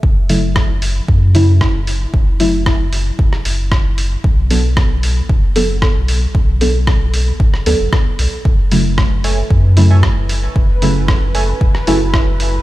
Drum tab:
HH |--o-o-o---o---o-|--o-o-o---o---o-|--o-o-o---o---o-|--o-o-o---o---o-|
SD |----r-------r---|----r----r--r---|----r-------r---|----r----r--r---|
BD |o---o---o---o---|o---o---o---o---|o---o---o---o---|o---o---o---o---|

HH |--o-o-o---o---o-|--o-o-o---o---o-|
SD |----r-------r---|----r----r--r---|
BD |o---o---o---o---|o---o---o---o---|